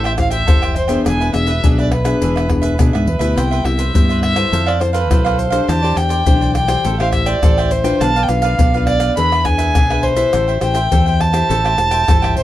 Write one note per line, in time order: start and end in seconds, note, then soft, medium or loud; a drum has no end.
0.00 0.48 A1 medium
0.00 0.45 A3 medium
0.00 0.13 E4 medium
0.00 0.13 G4 medium
0.00 0.14 C5 medium
0.04 0.16 C5 medium
0.04 0.17 E5 medium
0.04 0.12 E5 medium
0.04 0.17 G5 medium
0.04 pandeiro soft
0.04 tamborim medium
0.04 shaker soft
0.17 0.35 E4 soft
0.17 0.36 G4 medium
0.17 0.36 C5 medium
0.17 0.31 F5 medium
0.17 muted cavaquinho stroke soft
0.17 pandeiro medium
0.17 tamborim medium
0.17 shaker medium
0.17 surdo medium
0.31 0.46 C5 medium
0.31 0.46 E5 medium
0.31 0.73 E5 medium
0.31 0.45 G5 medium
0.31 pandeiro medium
0.31 shaker medium
0.47 0.97 F1 medium
0.47 1.03 E3 medium
0.47 0.75 E4 medium
0.47 0.75 G4 medium
0.47 0.61 A4 soft
0.47 0.61 C5 soft
0.47 0.76 C5 medium
0.47 0.61 E5 soft
0.47 0.61 G5 medium
0.47 pandeiro medium
0.47 tamborim medium
0.47 shaker medium
0.47 surdo loud
0.62 0.89 C5 medium
0.62 0.88 E5 medium
0.62 0.86 G5 medium
0.62 pandeiro soft
0.62 tamborim medium
0.62 shaker soft
0.76 1.04 C5 medium
0.76 pandeiro medium
0.76 shaker medium
0.88 1.29 B3 medium
0.88 1.29 D4 medium
0.88 1.29 G#4 medium
0.88 1.04 C5 medium
0.88 1.04 E5 medium
0.88 1.03 G5 medium
0.88 pandeiro medium
0.88 shaker medium
1.05 1.30 E1 medium
1.05 1.61 E3 medium
1.05 1.19 D4 soft
1.05 1.19 G#4 soft
1.05 1.19 B4 soft
1.05 1.19 E5 medium
1.05 1.33 G#5 medium
1.05 pandeiro medium
1.05 tamborim medium
1.05 shaker medium
1.05 surdo medium
1.20 1.32 G#4 medium
1.20 1.33 B4 medium
1.20 1.33 E5 medium
1.20 pandeiro soft
1.20 shaker soft
1.33 1.59 E1 medium
1.33 1.51 B3 medium
1.33 1.51 D4 medium
1.33 1.51 G#4 medium
1.33 1.75 E5 medium
1.33 muted cavaquinho stroke soft
1.33 pandeiro medium
1.33 tamborim medium
1.33 shaker medium
1.46 1.62 G#4 medium
1.46 1.62 B4 medium
1.46 1.61 E5 medium
1.46 pandeiro medium
1.46 shaker medium
1.63 2.13 B1 medium
1.63 2.19 B2 medium
1.63 1.91 B3 medium
1.63 1.77 D4 soft
1.63 1.91 D4 medium
1.63 1.77 G#4 soft
1.63 1.91 G#4 medium
1.63 1.78 B4 soft
1.63 1.77 E5 soft
1.63 pandeiro medium
1.63 shaker medium
1.63 surdo loud
1.78 2.06 G#4 soft
1.78 2.05 B4 medium
1.78 1.92 D5 medium
1.78 2.03 E5 medium
1.78 pandeiro soft
1.78 shaker soft
1.92 2.76 B4 medium
1.92 pandeiro medium
1.92 tamborim medium
2.04 2.45 B3 medium
2.04 2.45 D4 medium
2.04 2.45 G#4 medium
2.04 2.20 G#4 soft
2.04 2.20 B4 medium
2.04 2.19 E5 medium
2.04 pandeiro medium
2.04 tamborim medium
2.04 shaker medium
2.21 2.79 E1 medium
2.21 2.77 E3 medium
2.21 2.35 D4 soft
2.21 2.35 G#4 medium
2.21 2.35 B4 medium
2.21 2.35 E5 medium
2.21 pandeiro medium
2.21 shaker medium
2.21 surdo medium
2.36 2.48 G#4 medium
2.36 2.48 B4 medium
2.36 2.49 E5 medium
2.36 pandeiro soft
2.36 tamborim medium
2.36 shaker soft
2.49 2.74 B3 medium
2.49 2.75 D4 soft
2.49 2.75 G#4 medium
2.49 muted cavaquinho stroke soft
2.49 pandeiro medium
2.49 tamborim medium
2.49 surdo medium
2.62 2.78 G#4 medium
2.62 2.77 B4 medium
2.62 2.77 E5 medium
2.62 pandeiro medium
2.62 shaker medium
2.78 3.34 B2 medium
2.78 2.92 B2 medium
2.78 3.07 B3 medium
2.78 2.92 D4 soft
2.78 3.07 D4 medium
2.78 2.92 G#4 soft
2.78 3.07 G#4 medium
2.78 2.93 B4 medium
2.78 2.92 E5 medium
2.78 pandeiro medium
2.78 tamborim medium
2.78 shaker medium
2.78 surdo loud
2.93 3.06 G#2 medium
2.93 3.20 G#4 medium
2.93 3.19 B4 medium
2.93 3.18 E5 medium
2.93 pandeiro soft
2.93 tamborim medium
2.93 shaker soft
3.07 3.20 E2 medium
3.07 3.39 B4 medium
3.07 pandeiro medium
3.19 3.34 D2 medium
3.19 3.61 B3 medium
3.19 3.61 E4 medium
3.19 3.61 G4 medium
3.19 3.36 G#4 soft
3.19 3.35 B4 medium
3.19 3.34 E5 medium
3.19 pandeiro medium
3.19 shaker medium
3.36 3.62 C2 medium
3.36 3.92 C3 medium
3.36 3.50 E4 soft
3.36 3.50 B4 soft
3.36 3.51 C5 medium
3.36 3.50 E5 medium
3.36 3.67 G5 medium
3.36 pandeiro medium
3.36 tamborim medium
3.36 shaker medium
3.36 surdo medium
3.51 3.63 B4 medium
3.51 3.64 C5 medium
3.51 3.64 E5 medium
3.51 pandeiro soft
3.51 shaker soft
3.64 3.90 C2 medium
3.64 3.83 B3 medium
3.64 3.83 E4 medium
3.64 3.83 G4 medium
3.64 4.22 E5 medium
3.64 muted cavaquinho stroke soft
3.64 pandeiro medium
3.64 tamborim medium
3.78 3.93 B4 medium
3.78 3.93 C5 medium
3.78 3.92 E5 medium
3.78 pandeiro medium
3.78 shaker medium
3.94 4.44 G2 medium
3.94 4.50 G3 medium
3.94 4.34 B3 medium
3.94 4.08 E4 soft
3.94 4.34 E4 medium
3.94 4.34 G4 medium
3.94 4.08 B4 soft
3.94 4.09 C5 soft
3.94 4.08 E5 medium
3.94 pandeiro medium
3.94 shaker medium
3.94 surdo loud
4.09 4.36 B4 medium
4.09 4.35 C5 medium
4.09 4.34 E5 medium
4.09 pandeiro soft
4.09 shaker soft
4.22 4.69 E5 medium
4.22 pandeiro medium
4.22 tamborim medium
4.35 4.76 E4 medium
4.35 4.76 A4 medium
4.35 4.51 B4 medium
4.35 4.51 C5 medium
4.35 4.77 C5 medium
4.35 4.50 E5 medium
4.35 pandeiro medium
4.35 tamborim medium
4.35 shaker medium
4.51 5.11 F2 medium
4.51 5.08 F3 medium
4.51 4.66 E4 soft
4.51 4.66 A4 medium
4.51 4.66 C5 medium
4.51 4.65 F5 medium
4.51 pandeiro medium
4.51 shaker medium
4.51 surdo medium
4.66 4.79 A4 medium
4.66 4.79 C5 medium
4.66 4.82 D5 medium
4.66 4.80 F5 medium
4.66 pandeiro soft
4.66 tamborim medium
4.66 shaker soft
4.80 4.98 E4 medium
4.80 4.99 A4 medium
4.80 4.93 C5 medium
4.80 4.99 C5 medium
4.80 muted cavaquinho stroke soft
4.80 pandeiro medium
4.80 tamborim medium
4.80 shaker medium
4.93 5.09 A4 medium
4.93 5.39 B4 medium
4.93 5.09 C5 medium
4.93 5.08 F5 medium
4.93 pandeiro medium
4.93 shaker medium
5.10 5.60 B1 medium
5.10 5.24 E4 soft
5.10 5.50 E4 medium
5.10 5.24 A4 soft
5.10 5.50 A4 medium
5.10 5.50 C5 medium
5.10 5.25 C5 medium
5.10 5.23 F5 soft
5.10 pandeiro medium
5.10 tamborim medium
5.10 shaker medium
5.10 surdo medium
5.25 5.52 A4 medium
5.25 5.51 C5 medium
5.25 5.49 F5 medium
5.25 pandeiro soft
5.25 tamborim medium
5.25 shaker soft
5.38 5.70 C5 medium
5.38 pandeiro medium
5.38 shaker medium
5.50 5.82 D4 medium
5.50 5.83 G4 medium
5.50 5.67 A4 medium
5.50 5.67 C5 medium
5.50 5.83 C5 medium
5.50 5.66 F5 medium
5.50 pandeiro medium
5.50 shaker medium
5.68 5.93 E2 medium
5.68 6.24 E3 medium
5.68 5.82 E4 soft
5.68 5.82 G4 soft
5.68 5.82 C5 soft
5.68 5.81 D5 medium
5.68 5.98 A5 medium
5.68 pandeiro medium
5.68 tamborim medium
5.68 shaker medium
5.68 surdo medium
5.83 6.22 D4 medium
5.83 6.23 G4 medium
5.83 5.95 G4 medium
5.83 5.96 C5 medium
5.83 6.23 C5 medium
5.83 5.96 D5 medium
5.83 pandeiro soft
5.83 shaker soft
5.96 6.22 E2 medium
5.96 6.54 G5 medium
5.96 muted cavaquinho stroke soft
5.96 pandeiro medium
5.96 tamborim medium
5.96 shaker medium
6.09 6.25 G4 medium
6.09 6.25 C5 medium
6.09 6.24 D5 medium
6.09 pandeiro medium
6.09 shaker medium
6.26 6.76 B1 medium
6.26 6.82 E3 medium
6.26 6.54 D4 medium
6.26 6.40 E4 soft
6.26 6.40 G4 soft
6.26 6.54 G4 medium
6.26 6.41 C5 medium
6.26 6.54 C5 medium
6.26 6.40 D5 medium
6.26 pandeiro medium
6.26 shaker medium
6.26 surdo loud
6.41 6.69 G4 medium
6.41 6.68 C5 medium
6.41 6.66 D5 medium
6.41 pandeiro soft
6.41 shaker soft
6.55 6.96 G5 loud
6.55 pandeiro medium
6.55 tamborim medium
6.55 shaker medium
6.68 6.94 E4 medium
6.68 6.94 G4 medium
6.68 6.84 G4 medium
6.68 6.83 C5 medium
6.68 6.94 C5 medium
6.68 6.82 D5 medium
6.68 pandeiro medium
6.68 tamborim medium
6.68 shaker medium
6.85 7.34 A1 medium
6.85 7.40 A3 medium
6.85 6.98 A4 medium
6.85 6.99 C5 medium
6.85 6.99 E5 medium
6.85 6.98 G5 medium
6.85 pandeiro medium
6.85 shaker medium
6.85 surdo medium
7.00 7.39 E4 medium
7.00 7.39 G4 medium
7.00 7.39 C5 medium
7.00 7.12 C5 medium
7.00 7.13 E5 medium
7.00 7.12 F5 medium
7.00 7.13 G5 medium
7.00 pandeiro soft
7.00 tamborim medium
7.00 shaker soft
7.13 7.28 E5 medium
7.13 muted cavaquinho stroke soft
7.13 pandeiro medium
7.13 tamborim medium
7.13 shaker medium
7.13 surdo medium
7.26 7.42 C5 medium
7.26 7.72 D5 medium
7.26 7.41 E5 medium
7.26 7.41 G5 medium
7.26 pandeiro medium
7.26 shaker medium
7.42 7.92 A1 medium
7.42 7.98 E3 medium
7.42 7.70 E4 medium
7.42 7.70 G4 medium
7.42 7.56 A4 soft
7.42 7.71 C5 medium
7.42 7.57 C5 medium
7.42 7.57 E5 soft
7.42 7.56 G5 medium
7.42 pandeiro medium
7.42 tamborim medium
7.42 shaker medium
7.42 surdo loud
7.58 7.85 C5 medium
7.58 7.84 E5 medium
7.58 7.83 G5 medium
7.58 pandeiro soft
7.58 tamborim medium
7.58 shaker soft
7.71 8.02 C5 medium
7.71 pandeiro medium
7.71 shaker medium
7.84 8.10 D4 medium
7.84 8.10 F4 medium
7.84 8.10 B4 medium
7.84 8.00 C5 medium
7.84 7.99 E5 medium
7.84 7.99 G5 medium
7.84 pandeiro medium
7.84 shaker medium
8.01 8.26 B1 medium
8.01 8.56 B3 medium
8.01 8.14 D4 soft
8.01 8.15 B4 soft
8.01 8.15 D5 medium
8.01 8.15 F5 medium
8.01 8.24 A5 loud
8.01 pandeiro medium
8.01 tamborim medium
8.01 shaker medium
8.01 surdo medium
8.16 8.28 B4 medium
8.16 8.29 D5 medium
8.16 8.29 F5 medium
8.16 pandeiro soft
8.16 shaker soft
8.23 8.30 G5 medium
8.28 8.54 B1 medium
8.28 8.68 D4 medium
8.28 8.69 F4 medium
8.28 8.69 B4 medium
8.28 8.86 F5 medium
8.28 muted cavaquinho stroke soft
8.28 pandeiro medium
8.28 tamborim medium
8.28 shaker medium
8.42 8.58 B4 medium
8.42 8.58 D5 medium
8.42 8.57 F5 medium
8.42 pandeiro medium
8.42 shaker medium
8.58 9.09 B1 medium
8.58 9.14 B3 medium
8.58 8.72 D4 soft
8.58 8.73 B4 soft
8.58 8.73 D5 medium
8.58 8.73 F5 soft
8.58 pandeiro medium
8.58 shaker medium
8.58 surdo loud
8.74 9.13 D4 medium
8.74 9.13 F4 medium
8.74 9.13 B4 medium
8.74 9.01 B4 medium
8.74 9.00 D5 medium
8.74 8.99 F5 medium
8.74 pandeiro soft
8.74 shaker soft
8.87 9.15 D5 medium
8.87 pandeiro medium
8.87 tamborim medium
9.00 9.16 B4 medium
9.00 9.15 D5 medium
9.00 9.15 F5 medium
9.00 pandeiro medium
9.00 tamborim medium
9.00 shaker medium
9.17 9.76 E2 medium
9.17 9.73 E3 medium
9.17 9.31 D4 medium
9.17 9.42 D4 soft
9.17 9.31 G#4 medium
9.17 9.42 G#4 medium
9.17 9.42 B4 medium
9.17 9.31 B4 medium
9.17 9.31 E5 medium
9.17 9.47 B5 loud
9.17 pandeiro medium
9.17 shaker medium
9.17 surdo medium
9.32 9.45 G#4 medium
9.32 9.45 B4 medium
9.32 9.45 E5 medium
9.32 pandeiro soft
9.32 tamborim medium
9.32 shaker soft
9.45 9.85 D4 soft
9.45 9.85 G#4 medium
9.45 9.85 B4 medium
9.45 10.05 G#5 loud
9.45 muted cavaquinho stroke soft
9.45 pandeiro medium
9.45 tamborim medium
9.45 shaker medium
9.45 surdo medium
9.58 9.74 G#4 medium
9.58 9.74 B4 medium
9.58 9.73 E5 medium
9.58 pandeiro medium
9.58 shaker medium
9.75 10.25 B1 medium
9.75 10.31 B2 medium
9.75 9.89 D4 soft
9.75 9.89 G#4 soft
9.75 9.89 B4 medium
9.75 9.89 E5 medium
9.75 pandeiro medium
9.75 tamborim medium
9.75 shaker medium
9.75 surdo loud
9.90 10.15 D4 medium
9.90 10.15 G#4 medium
9.90 10.18 G#4 medium
9.90 10.15 B4 medium
9.90 10.17 B4 medium
9.90 10.15 E5 medium
9.90 pandeiro soft
9.90 tamborim medium
9.90 shaker soft
10.03 10.62 C5 medium
10.03 pandeiro medium
10.16 10.57 E4 medium
10.16 10.57 G4 medium
10.16 10.32 G#4 medium
10.16 10.32 B4 medium
10.16 10.57 C5 medium
10.16 10.31 E5 medium
10.16 pandeiro medium
10.16 shaker medium
10.33 10.58 A1 medium
10.33 10.89 A3 medium
10.33 10.47 A4 soft
10.33 10.47 C5 soft
10.33 10.48 E5 medium
10.33 10.46 G5 medium
10.33 pandeiro medium
10.33 tamborim medium
10.33 shaker medium
10.33 surdo medium
10.48 10.60 C5 medium
10.48 10.61 E5 medium
10.48 10.61 G5 medium
10.48 pandeiro soft
10.48 shaker soft
10.61 10.87 A1 medium
10.61 10.79 E4 medium
10.61 10.79 G4 medium
10.61 10.79 C5 medium
10.61 11.22 G5 medium
10.61 muted cavaquinho stroke soft
10.61 pandeiro medium
10.61 tamborim medium
10.61 shaker medium
10.74 10.90 C5 medium
10.74 10.90 E5 medium
10.74 10.89 G5 medium
10.74 pandeiro medium
10.74 shaker medium
10.91 11.42 E2 medium
10.91 11.47 E3 medium
10.91 11.31 E4 medium
10.91 11.31 G4 medium
10.91 11.05 A4 soft
10.91 11.05 C5 soft
10.91 11.31 C5 medium
10.91 11.06 E5 soft
10.91 11.05 G5 medium
10.91 pandeiro medium
10.91 shaker medium
10.91 surdo medium
11.06 11.34 C5 medium
11.06 11.33 E5 medium
11.06 11.32 G5 medium
11.06 pandeiro soft
11.06 shaker soft
11.20 12.37 A5 loud
11.20 pandeiro medium
11.20 tamborim medium
11.33 11.73 E4 medium
11.33 11.73 G4 medium
11.33 11.74 C5 medium
11.33 11.49 C5 medium
11.33 11.48 E5 medium
11.33 11.48 G5 medium
11.33 pandeiro medium
11.33 tamborim medium
11.33 shaker medium
11.49 11.75 A1 medium
11.49 12.05 A3 soft
11.49 11.63 A4 soft
11.49 11.63 C5 medium
11.49 11.64 E5 medium
11.49 11.63 G5 medium
11.49 pandeiro medium
11.49 shaker medium
11.49 surdo medium
11.64 11.77 C5 medium
11.64 11.77 E5 medium
11.64 11.77 G5 medium
11.64 pandeiro soft
11.64 tamborim medium
11.64 shaker soft
11.77 12.04 E1 medium
11.77 12.03 E4 medium
11.77 12.03 G4 medium
11.77 12.03 C5 medium
11.77 muted cavaquinho stroke soft
11.77 pandeiro medium
11.77 tamborim medium
11.77 shaker medium
11.91 12.07 C5 medium
11.91 12.06 E5 medium
11.91 12.06 G5 medium
11.91 pandeiro medium
11.91 shaker medium
12.07 12.34 G1 medium
12.07 12.43 E3 medium
12.07 12.36 E4 medium
12.07 12.36 G4 medium
12.07 12.21 A4 soft
12.07 12.22 C5 soft
12.07 12.36 C5 medium
12.07 12.22 E5 medium
12.07 12.21 G5 soft
12.07 pandeiro medium
12.07 tamborim medium
12.07 shaker medium
12.07 surdo loud
12.22 12.43 C5 medium
12.22 12.43 E5 medium
12.22 12.43 G5 medium
12.22 pandeiro soft
12.22 tamborim medium
12.22 shaker soft
12.36 12.43 A1 medium
12.36 12.43 C5 medium
12.36 pandeiro medium
12.36 shaker medium